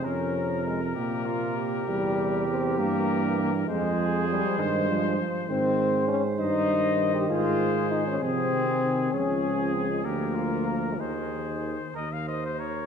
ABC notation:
X:1
M:6/8
L:1/16
Q:3/8=66
K:Fm
V:1 name="Trumpet"
B12- | B6 B6 | c12- | [K:Ab] c4 z2 e6 |
c6 A6 | A6 B6 | c6 e f e c d2 |]
V:2 name="Flugelhorn"
B6 G2 F2 G2- | G12 | A6 c4 z2 | [K:Ab] c12 |
A6 A6 | A6 G2 F2 B2 | A6 B2 c2 B2 |]
V:3 name="French horn"
D4 A,2 B,6 | G,4 C2 B,4 B,2 | A,4 G,2 A,4 z2 | [K:Ab] C4 D2 E4- E G |
F4 E D C6 | D4 C A, B,6 | E,6 z6 |]
V:4 name="Trombone" clef=bass
C,12- | C,6 =E,6 | F,6 E,2 F,2 F,2 | [K:Ab] E,4 z2 E,6- |
E,6 F,2 E,2 E,2 | F,6 F,6 | E,6 E,4 z2 |]
V:5 name="Tuba" clef=bass
F,,6 B,,6 | =E,,6 G,,6 | F,,6 G,,4 z2 | [K:Ab] A,,6 G,,6 |
A,,6 C,6 | D,,6 =D,,6 | E,,6 E,,6 |]